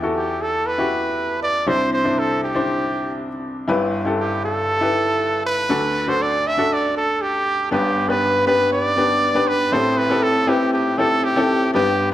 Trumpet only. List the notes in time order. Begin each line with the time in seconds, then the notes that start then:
0.16 G4
0.42 A4
0.66 B4
1.43 D5
1.68 C5
1.93 C5
2.19 A4
2.44 G4
4.20 G4
4.45 A4
5.46 B4
6.09 C5
6.22 D5
6.47 E5
6.73 D5
6.97 A4
7.22 G4
7.72 G4
8.09 B4
8.47 B4
8.72 D5
9.48 B4
9.73 C5
9.98 B4
10.23 A4
10.49 G4
10.73 G4
10.98 A4
11.24 G4
11.74 G4